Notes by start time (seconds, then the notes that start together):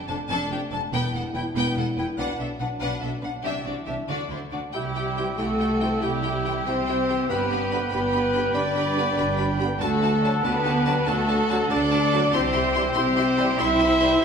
Already playing: A3 D4
0.08 F1 F2 D4 A4 A5
0.29 F1 F2 D4 A4 A5
0.50 F1 F2 D4 G4 G5
0.71 F1 F2 D4 A4 A5
0.92 E1 E2 G3 B3 E4 B4 G5
1.13 E1 E2 B3 A4 F#5
1.34 E1 E2 B3 E4 B4 G5
1.55 E1 E2 B3 B4 G5
1.76 E1 E2 B3 A4 F#5
1.97 E1 E2 B3 E4 B4 G5
2.18 B1 B2 F#3 D4 B4 F#5
2.38 B1 B2 D4 A4 E5
2.60 B1 B2 D4 B4 F#5
2.80 B1 B2 D4 B4 F#5
3.01 B1 B2 D4 A4 E5
3.22 B1 B2 D4 B4 F#5
3.42 C2 C3 E3 D4 G4 E5
3.65 C2 C3 D4 F#4 D5
3.86 C2 C3 D4 G4 E5
4.08 D2 D3 F#3 D4 F#4 D5
4.30 D2 D3 D4 E4 C5
4.51 D2 D3 D4 F#4 D5 F#5
4.73 C2 G3 E4 G4 E5 G5
4.95 E4 G4 G5
5.16 E3 C4 E4 G4 G5
5.38 C2 A3 E4 F#4 G4 A4 G5
5.59 E4 G4 G5
5.80 E3 C4 E4 G4 G5
6.00 C2 G3 E4 G4 G5
6.23 E4 G4 G5
6.44 E3 C4 E4 G4 G5
6.66 C2 C4 E4 G4 C5 G5
6.87 E4 G4 G5
7.08 E3 C4 E4 G4 G5
7.28 G1 B3 D4 G4 B4 G5 B5
7.51 D4 G4 B5
7.71 D3 B3 D4 G4 B5
7.90 G1 B3 D4 G4 B4 B5
8.12 D4 G4 B5
8.33 D3 B3 D4 G4 B5
8.53 G1 D4 G4 B4 D5 B5
8.75 D4 G4 B5
8.96 D3 B3 D4 G4 B5
9.17 G1 D4 G4 B5
9.37 D4 G4 B5
9.59 D3 B3 D4 G4 B5
9.80 D2 A3 D4 F#4 A4 F#5 A5
10.01 D4 F#4 A5
10.22 D3 F#3 D4 F#4 A5
10.43 D2 B3 D4 F#4 G4 B4 A5
10.65 D4 F#4 A5
10.85 D3 F#3 D4 F#4 A5
11.06 D2 A3 D4 F#4 A4 A5
11.28 D4 F#4 A5
11.48 D3 F#3 D4 F#4 A5
11.70 D2 D4 F#4 A4 D5 A5
11.91 D4 F#4 A5
12.12 D3 F#3 D4 F#4 A5
12.31 C2 C4 E4 G4 C5 E5 G5 C6
12.53 E4 G4 C6
12.74 E3 G3 E4 G4 C6
12.94 C2 C4 E4 G4 C5 C6
13.17 E4 G4 C6
13.37 E3 G3 E4 G4 C6
13.57 C2 E4 G4 C5 E5 C6
13.79 E4 G4 C6
13.99 E3 G3 E4 G4 C6
14.19 C2 E4 G4 C6